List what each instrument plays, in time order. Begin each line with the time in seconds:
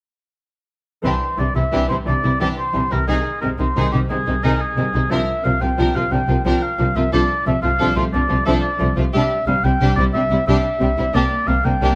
1.04 double bass section C2, cello section C3, viola section E3, violin section D4 G4, oboe C5
1.38 double bass section C2, cello section C3, viola section E3, violin section G3 D4, oboe D5
1.55 double bass section C2, cello section C3, viola section E3, violin section C4 E4, oboe E5
1.72 double bass section C2, cello section C3, viola section E3, violin section D4 G4
1.89 double bass section C2, cello section C3, viola section E3, violin section C4 E4, oboe C5
2.06 double bass section C2, cello section C3, viola section E3, violin section G3 D4, oboe D5
2.23 double bass section C2, cello section C3, viola section E3, violin section C4 E4
2.40 double bass section C2, cello section C3, viola section E3, violin section D4 G4, oboe D5
2.59 oboe C5
2.74 double bass section C2, cello section C3, viola section E3, violin section G3 D4
2.90 double bass section C2, cello section C3, viola section E3, violin section C4 E4, oboe A#4
3.07 double bass section C2, cello section C3, viola section D#3, violin section D#4 G#4, oboe G#4
3.41 double bass section C2, cello section C3, viola section D#3, violin section G#3 C4, oboe A#4
3.58 double bass section C2, cello section C3, viola section D#3, violin section C4 D#4, oboe C5
3.76 double bass section C2, cello section C3, viola section D#3, violin section D#4 G#4
3.92 double bass section C2, cello section C3, viola section D#3, violin section C4 D#4, oboe G4
4.10 double bass section C2, cello section C3, viola section D#3, violin section G#3 C4, oboe G#4
4.26 double bass section C2, cello section C3, viola section D#3, violin section C4 D#4
4.43 double bass section C2, cello section C3, viola section D#3, violin section D#4 G#4, oboe A#4
4.62 oboe G#4
4.77 double bass section C2, cello section C3, viola section D#3, violin section G#3 C4
4.93 double bass section C2, cello section C3, viola section D#3, violin section C4 D#4
5.10 double bass section C2, cello section C3, viola section F3, violin section D4 A#4, oboe E5
5.43 double bass section C2, cello section C3, viola section F3, violin section A#3 D4, oboe F5
5.60 double bass section C2, cello section C3, viola section F3, violin section A#3 F4, oboe G5
5.78 double bass section C2, cello section C3, viola section F3, violin section D4 A#4
5.94 double bass section C2, cello section C3, viola section F3, violin section A#3 F4, oboe F5
6.11 double bass section C2, cello section C3, viola section F3, violin section A#3 D4, oboe G5
6.28 double bass section C2, cello section C3, viola section F3, violin section A#3 F4
6.45 double bass section C2, cello section C3, viola section F3, violin section D4 A#4, oboe G5
6.62 oboe F5
6.79 double bass section C2, cello section C3, viola section F3, violin section A#3 D4
6.95 double bass section C2, cello section C3, viola section F3, violin section A#3 F4, oboe E5
7.12 double bass section C2, cello section C3, viola section F3, violin section D4 A4, oboe D5
7.46 double bass section C2, cello section C3, viola section F3, violin section A3 D4, oboe E5
7.62 double bass section C2, cello section C3, viola section F3, violin section A3 F4, oboe F5
7.78 double bass section C2, cello section C3, viola section F3, violin section D4 A4
7.95 double bass section C2, cello section C3, viola section F3, violin section A3 F4, oboe C5
8.13 double bass section C2, cello section C3, viola section F3, violin section A3 D4, oboe D5
8.29 double bass section C2, cello section C3, viola section F3, violin section A3 F4
8.46 double bass section C2, cello section C3, viola section F3, violin section D4 A4, oboe E5
8.62 oboe D5
8.80 double bass section C2, cello section C3, viola section F3, violin section A3 D4
8.97 double bass section C2, cello section C3, viola section F3, violin section A3 F4
9.13 double bass section C2, cello section C3, viola section G3, violin section D4 G4, oboe E5
9.47 double bass section C2, cello section C3, viola section G3, violin section G3 D4, oboe F5
9.64 double bass section C2, cello section C3, viola section G3, violin section C4 E4, oboe G5
9.81 double bass section C2, cello section C3, viola section G3, violin section D4 G4
9.96 double bass section C2, cello section C3, viola section G3, violin section C4 E4, oboe D5
10.13 double bass section C2, cello section C3, viola section G3, violin section G3 D4, oboe E5
10.30 double bass section C2, cello section C3, viola section G3, violin section C4 E4
10.47 double bass section C2, cello section C3, viola section G3, violin section D4 G4, oboe E5
10.80 double bass section C2, cello section C3, viola section G3, violin section G3 D4
10.97 double bass section C2, cello section C3, viola section G3, violin section C4 E4
11.13 double bass section C2, cello section C3, viola section A#3, violin section D4 G4, oboe D5
11.47 double bass section C2, cello section C3, violin section G3 A#3, viola section A#3, oboe F5
11.64 double bass section C2, cello section C3, viola section A#3, violin section A#3 D4, oboe G5
11.81 double bass section C2, cello section C3, viola section A#3, violin section D4 G4